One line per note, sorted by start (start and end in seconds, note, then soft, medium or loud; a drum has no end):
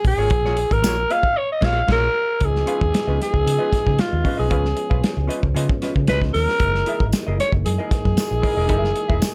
0.04 0.16 A#1 medium
0.04 0.74 G#4 loud
0.04 kick medium
0.04 open hi-hat medium
0.17 0.30 G#1 medium
0.17 0.31 A#3 medium
0.17 0.31 F4 medium
0.17 0.31 G#4 medium
0.17 0.32 C#5 medium
0.30 0.64 A#1 loud
0.30 muted hollow-body jazz guitar stroke soft
0.30 kick loud
0.30 closed hi-hat medium
0.45 0.57 A#3 medium
0.45 0.57 F4 medium
0.45 0.58 G#4 medium
0.45 0.58 C#5 loud
0.45 snare soft
0.57 muted hollow-body jazz guitar stroke soft
0.57 closed hi-hat medium
0.71 0.82 G#1 medium
0.71 1.13 A#4 loud
0.71 muted hollow-body jazz guitar stroke soft
0.71 kick loud
0.71 closed hi-hat medium
0.82 1.04 A#1 loud
0.82 0.99 A#3 medium
0.82 0.98 F4 medium
0.82 0.97 G#4 medium
0.82 snare loud
0.82 closed hi-hat medium
0.82 tambourine loud
0.86 0.96 C#5 medium
0.98 muted hollow-body jazz guitar stroke soft
1.10 1.22 A#3 medium
1.10 1.22 F4 medium
1.10 1.22 G#4 medium
1.10 1.23 D#5 medium
1.10 1.39 F5 loud
1.10 closed hi-hat medium
1.23 muted hollow-body jazz guitar stroke medium
1.23 kick medium
1.37 1.50 C#5 loud
1.52 1.66 D#5 loud
1.61 1.80 A#1 loud
1.61 1.80 A#3 loud
1.61 1.80 F4 loud
1.61 1.80 G#4 loud
1.61 1.81 C#5 loud
1.61 1.90 F5 loud
1.61 kick loud
1.61 snare loud
1.61 crash medium
1.87 2.07 A#1 loud
1.87 2.06 A#3 loud
1.87 2.06 F4 loud
1.87 2.07 G#4 loud
1.87 2.07 C#5 loud
1.87 kick loud
1.87 snare loud
1.87 crash medium
1.92 2.47 A#4 loud
2.41 2.63 C#2 loud
2.41 6.57 F3 medium
2.41 9.34 G#3 medium
2.41 6.57 B3 medium
2.41 4.49 D#4 medium
2.41 kick loud
2.41 closed hi-hat medium
2.45 3.22 G#4 loud
2.56 snare soft
2.66 2.82 C#4 medium
2.66 2.82 F4 medium
2.66 2.82 B4 medium
2.66 2.83 F5 medium
2.66 closed hi-hat medium
2.81 2.91 D#2 medium
2.81 kick loud
2.92 muted hollow-body jazz guitar stroke soft
2.92 snare loud
2.92 closed hi-hat medium
3.07 3.18 C#2 medium
3.07 3.19 C#4 medium
3.07 3.20 F4 medium
3.07 3.20 B4 medium
3.07 3.21 D#5 medium
3.20 4.01 G#4 loud
3.20 muted hollow-body jazz guitar stroke soft
3.20 snare soft
3.20 closed hi-hat medium
3.33 3.44 C#2 medium
3.33 muted hollow-body jazz guitar stroke soft
3.33 kick medium
3.46 3.57 C#3 loud
3.46 muted hollow-body jazz guitar stroke soft
3.46 closed hi-hat loud
3.58 3.71 C#4 medium
3.58 3.71 F4 medium
3.58 3.71 B4 medium
3.58 3.72 D#5 medium
3.73 muted fingered electric bass stroke soft
3.73 kick medium
3.73 snare soft
3.73 closed hi-hat medium
3.86 3.97 C#3 loud
3.86 muted hollow-body jazz guitar stroke soft
3.86 kick loud
3.99 4.39 F4 medium
3.99 muted hollow-body jazz guitar stroke soft
3.99 muted fingered electric bass stroke soft
3.99 snare loud
3.99 closed hi-hat medium
4.13 4.23 D#2 medium
4.13 muted hollow-body jazz guitar stroke soft
4.24 4.36 C#4 medium
4.24 4.37 F4 medium
4.24 4.36 B4 medium
4.24 4.36 D#5 medium
4.24 kick medium
4.24 open hi-hat medium
4.37 4.51 B1 medium
4.37 4.49 C#4 medium
4.37 4.49 F4 medium
4.37 5.40 G#4 medium
4.37 4.49 B4 medium
4.37 4.48 D#5 medium
4.50 4.73 C#2 loud
4.50 4.65 C#4 medium
4.50 6.60 C#4 medium
4.50 4.66 F4 medium
4.50 4.66 B4 medium
4.50 4.66 F5 medium
4.50 kick loud
4.50 closed hi-hat medium
4.65 snare soft
4.76 muted hollow-body jazz guitar stroke soft
4.76 closed hi-hat medium
4.90 5.01 B1 medium
4.90 5.02 C#4 medium
4.90 5.02 F4 medium
4.90 5.01 B4 medium
4.90 5.01 F5 medium
4.90 kick loud
5.04 muted hollow-body jazz guitar stroke soft
5.04 snare loud
5.04 closed hi-hat medium
5.17 5.27 C#2 medium
5.17 muted hollow-body jazz guitar stroke soft
5.27 5.43 C#4 medium
5.27 5.43 F4 medium
5.27 5.42 B4 medium
5.27 5.42 D#5 loud
5.27 closed hi-hat medium
5.43 5.53 C#2 medium
5.43 muted hollow-body jazz guitar stroke soft
5.43 kick medium
5.55 5.67 C#3 loud
5.55 5.70 C#4 medium
5.55 5.69 F4 medium
5.55 5.69 B4 medium
5.55 5.68 D#5 medium
5.55 closed hi-hat medium
5.69 muted hollow-body jazz guitar stroke soft
5.69 kick loud
5.82 5.94 C#4 medium
5.82 5.94 F4 medium
5.82 5.94 B4 medium
5.82 5.95 D#5 medium
5.82 muted fingered electric bass stroke soft
5.82 snare soft
5.82 closed hi-hat medium
5.96 6.10 C#3 loud
5.96 kick medium
6.07 6.30 C#2 medium
6.07 6.32 C#4 medium
6.07 6.33 F4 medium
6.07 6.33 B4 loud
6.07 6.20 B4 loud
6.07 6.33 D#5 medium
6.07 snare loud
6.07 closed hi-hat medium
6.22 kick loud
6.22 snare soft
6.34 6.46 D#2 medium
6.34 7.09 A#4 loud
6.34 muted hollow-body jazz guitar stroke soft
6.34 snare soft
6.34 open hi-hat medium
6.49 muted hollow-body jazz guitar stroke soft
6.49 snare soft
6.60 6.82 F#1 loud
6.60 9.34 E3 medium
6.60 9.34 A#3 medium
6.60 9.34 D#4 medium
6.60 kick loud
6.60 closed hi-hat medium
6.75 snare soft
6.86 7.02 E4 medium
6.86 7.02 G#4 medium
6.86 7.02 A#4 medium
6.86 7.03 E5 medium
6.86 closed hi-hat medium
7.00 7.11 G#1 medium
7.00 kick loud
7.12 muted hollow-body jazz guitar stroke soft
7.12 snare loud
7.12 closed hi-hat medium
7.12 tambourine medium
7.27 7.38 F#1 medium
7.27 7.39 E4 medium
7.27 7.39 G#4 medium
7.27 7.39 A#4 medium
7.27 7.39 D#5 medium
7.40 7.52 C#5 medium
7.40 muted hollow-body jazz guitar stroke soft
7.40 snare soft
7.40 closed hi-hat medium
7.52 7.63 F#1 medium
7.52 muted hollow-body jazz guitar stroke medium
7.52 kick medium
7.66 7.77 F#2 loud
7.66 9.34 G#4 loud
7.66 muted hollow-body jazz guitar stroke soft
7.66 closed hi-hat loud
7.78 7.90 E4 medium
7.78 7.90 G#4 medium
7.78 7.91 A#4 medium
7.78 7.91 D#5 medium
7.91 muted hollow-body jazz guitar stroke soft
7.91 muted fingered electric bass stroke soft
7.91 kick loud
7.91 snare soft
7.91 closed hi-hat medium
8.04 8.15 F#2 loud
8.04 muted hollow-body jazz guitar stroke soft
8.04 kick loud
8.17 muted fingered electric bass stroke soft
8.17 muted hollow-body jazz guitar stroke medium
8.17 snare loud
8.17 closed hi-hat medium
8.17 tambourine medium
8.30 8.41 A#1 medium
8.30 muted hollow-body jazz guitar stroke medium
8.42 8.55 E4 medium
8.42 8.55 G#4 medium
8.42 8.56 A#4 medium
8.42 8.56 D#5 medium
8.42 kick medium
8.42 open hi-hat medium
8.57 8.69 E1 medium
8.57 8.66 E4 medium
8.57 8.68 G#4 medium
8.57 8.68 A#4 medium
8.57 8.68 D#5 medium
8.68 8.91 F#1 loud
8.68 8.89 E4 medium
8.68 8.90 G#4 medium
8.68 8.90 A#4 medium
8.68 8.90 E5 medium
8.68 kick loud
8.68 closed hi-hat medium
8.84 snare soft
8.95 muted hollow-body jazz guitar stroke soft
8.95 closed hi-hat medium
9.08 9.20 E1 medium
9.08 9.19 E4 medium
9.08 9.20 G#4 medium
9.08 9.20 A#4 medium
9.08 9.20 E5 medium
9.08 kick medium
9.20 muted hollow-body jazz guitar stroke soft
9.20 snare loud
9.20 closed hi-hat loud
9.20 tambourine medium